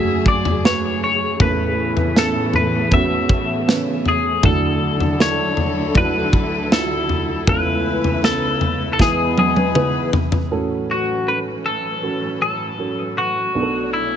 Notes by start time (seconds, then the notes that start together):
Already playing: F#1 F#2 C#3 F#3 A3 F#4 G#4 E5
0.26 D5, kick
0.45 floor tom
0.64 A3 F#4 B4 C#5, snare
1.04 C#5
1.40 A1 A2 E3 A3 B3 C#4 E4 A4 B4, kick, floor tom
1.97 floor tom
2.16 B3 C#4 A4, snare
2.53 B4, floor tom
2.91 B3 C#4 F#4 E5, kick, floor tom
3.29 kick
3.67 C#3 B3 C#4 B4, snare
4.06 G#4, floor tom
4.43 D2 D3 F#3 D4 E4 F#4 A4, kick, floor tom
5.00 floor tom
5.20 D4 E4 A4 C#5, snare
5.57 floor tom
5.95 D4 E4 F#4 B4, kick, floor tom
6.33 kick
6.71 D4 E4 F4 A4, snare
6.79 F#4
7.09 floor tom
7.47 C#2 C#3 E3 A3 B3 C#4 E4 A4 B4, kick, floor tom
8.04 floor tom
8.23 B3 C#4 A4, snare
8.61 floor tom
8.93 A4
8.99 E2 B2 E3 G#3 B3 E4 G#4 B4, kick, snare
9.38 G#4, high tom
9.56 high tom
9.75 B3 E4 B4, mid tom
10.13 floor tom
10.32 floor tom
10.51 A1 A2 E3 F#3 C#4 F#4 A4 B4
10.91 F#4
11.26 C#4 F#4 A4 B4
11.66 A4
12.02 C#4 F#4 A4
12.42 A4
12.78 C#4 F#4 A4
13.18 F#4
13.55 B1 B2 A3 B3 D4 G#4 C#5
13.62 A4
13.93 E4